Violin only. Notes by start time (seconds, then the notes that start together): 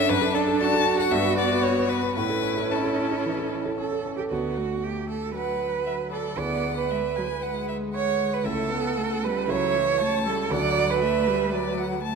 Already playing: E5
0.09 B4
0.34 A4
0.60 A5
0.99 F#5
1.11 E5
1.38 D5
1.63 C#5
1.89 B4
2.15 B4
2.71 A4
5.34 F#5
5.86 E5
6.11 D5
6.38 F#5
6.90 E5
7.16 G#5
7.42 F#5
7.68 E5
7.93 F#5
8.45 E5
8.70 F#5
9.48 E5
10.00 A5
10.51 F#5
11.02 E5
11.52 D5
11.77 F#5
12.02 A5